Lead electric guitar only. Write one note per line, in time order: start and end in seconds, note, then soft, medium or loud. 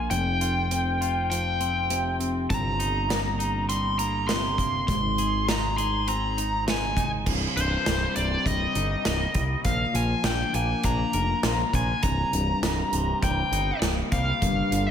0.10 1.29 G5 medium
1.30 2.16 G5 medium
2.50 3.66 A#5 medium
3.69 3.97 C6 medium
3.99 4.27 A#5 medium
4.28 4.86 C6 medium
4.87 5.49 C6 medium
5.49 5.77 A#5 medium
5.77 6.08 C6 medium
6.08 6.64 A#5 medium
6.70 7.10 G#5 medium
7.57 8.16 C5 medium
8.16 8.44 D5 medium
8.47 9.65 D#5 medium
9.65 9.96 F5 medium
9.95 10.25 G#5 medium
10.25 10.54 G5 medium
10.55 10.85 G#5 medium
10.85 11.75 A#5 medium
11.75 12.03 G#5 medium
12.03 13.23 A#5 medium
13.23 13.79 G5 medium
14.12 14.91 F5 medium